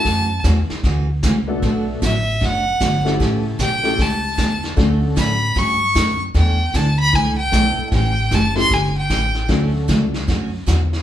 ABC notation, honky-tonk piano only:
X:1
M:4/4
L:1/8
Q:"Swing" 1/4=152
K:D
V:1 name="Honky-tonk piano"
z6 z [A,B,DFA]- | [A,B,DFA]2 z4 z [A,CEGA]- | [A,CEGA]2 z [A,CEGA] z4 | [A,CDFA]3 z4 z |
z6 [A,B,DEA]2 | z3 [A,CEGA] z4 | [A,CDFA]3 z4 z |]